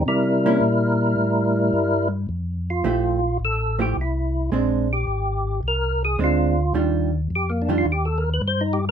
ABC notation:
X:1
M:4/4
L:1/16
Q:"Swing" 1/4=108
K:F
V:1 name="Tonewheel organ"
[G,EB]12- [G,EB]2 z2 | z2 F6 A2 G2 E4 | z2 G6 B2 _A2 F4 | z4 G B, D F G A B =B c _E G z |]
V:2 name="Hollow-body jazz guitar"
z2 [B,_DE]2 z12 | z4 [F,A,EG]2 z4 [F,A,EG]2 z4 | [_A,CD]2 z8 z2 [A,CD]2 z2 | [_E,G,DF]2 z4 [E,G,DF]2 z8 |]
V:3 name="Tonewheel organ" clef=bass
C,4 B,,4 A,,4 G,,4 | F,,4 B,,,4 A,,,4 C,,4 | B,,,4 _A,,,4 C,,4 D,,4 | _E,,4 F,,4 E,,4 G,,4 |]